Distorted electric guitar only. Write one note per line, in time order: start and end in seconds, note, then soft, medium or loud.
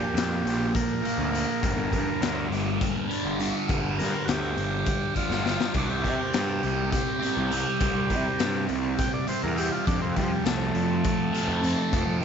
0.00 1.00 A#2 medium
0.00 1.02 F3 medium
0.00 1.05 A#3 medium
1.01 1.30 A#2 medium
1.01 1.31 F3 medium
1.01 1.31 A#3 medium
1.31 1.62 A#2 medium
1.31 1.61 F3 medium
1.31 4.81 A#3 medium
1.61 3.07 G2 medium
1.61 3.08 D3 medium
1.61 3.08 G3 medium
3.09 3.37 G2 medium
3.09 3.38 D3 medium
3.09 3.41 G3 medium
3.38 3.67 G2 medium
3.38 3.68 D3 medium
3.38 3.71 G3 medium
3.68 5.14 G2 medium
3.68 5.15 D3 loud
3.68 5.18 G3 medium
5.15 5.43 G2 medium
5.15 5.44 D3 medium
5.15 5.44 G3 medium
5.44 5.74 G2 medium
5.44 5.73 D3 medium
5.44 5.75 G3 medium
5.74 7.20 C3 medium
5.74 7.20 G3 medium
5.74 7.19 C4 medium
7.20 7.50 G3 medium
7.20 7.53 C4 medium
7.24 7.48 C3 medium
7.49 7.78 C3 medium
7.49 7.79 G3 medium
7.49 7.83 C4 medium
7.80 9.26 C3 medium
7.80 9.27 G3 medium
7.80 9.30 C4 medium
9.27 9.55 C3 medium
9.27 9.56 G3 medium
9.27 9.56 C4 medium
9.56 9.86 C3 medium
9.56 9.85 G3 medium
9.56 12.25 C4 medium
9.85 11.31 F2 medium
9.85 11.32 C3 medium
9.85 11.31 F3 loud
11.33 11.61 F2 medium
11.33 11.62 C3 medium
11.33 11.61 F3 medium
11.62 11.90 F2 medium
11.62 11.91 C3 medium
11.66 11.93 F3 medium
11.91 12.25 F2 medium
11.91 12.25 C3 loud
11.91 12.25 F3 medium